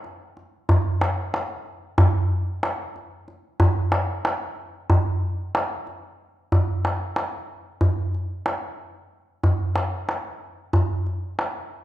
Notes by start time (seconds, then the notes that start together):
0.04 darbuka ka
0.37 darbuka ka
0.69 darbuka dum
1.01 darbuka tek
1.34 darbuka tek
1.98 darbuka dum
2.63 darbuka tek
2.96 darbuka ka
3.28 darbuka ka
3.60 darbuka dum
3.92 darbuka tek
4.25 darbuka tek
4.90 darbuka dum
5.55 darbuka tek
5.87 darbuka ka
6.52 darbuka dum
6.85 darbuka tek
7.16 darbuka tek
7.81 darbuka dum
8.14 darbuka ka
8.46 darbuka tek
9.43 darbuka dum
9.76 darbuka tek
10.09 darbuka tek
10.73 darbuka dum
11.07 darbuka ka
11.39 darbuka tek